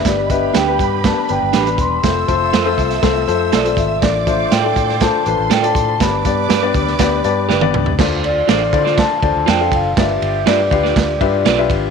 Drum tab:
CC |----------------|----------------|----------------|----------------|
RD |----------------|----------------|----------------|----------------|
HH |x-x-x-x-x-x-xxx-|x-x-x-xxx-x-xxx-|x-x-x-x-x-x-xxx-|x-x-x-x-x-x-----|
SD |o---o---o---o---|o---o--oo---o---|o---o--oo---o---|o---o--oo---o---|
T1 |----------------|----------------|----------------|-------------o--|
T2 |----------------|----------------|----------------|--------------o-|
FT |----------------|----------------|----------------|---------------o|
BD |o-o---o-o-----o-|o-o---o-o-----o-|o-o---o-o-----o-|o-o---o-o-------|

CC |x---------------|----------------|
RD |--x-x-x-x-x-x-x-|x-x-x-x-x-x-x-x-|
HH |----------------|----------------|
SD |o---o--oo---o---|o---o--oo---o---|
T1 |----------------|----------------|
T2 |----------------|----------------|
FT |----------------|----------------|
BD |o-----o-o-o---o-|o-----o-o-o---o-|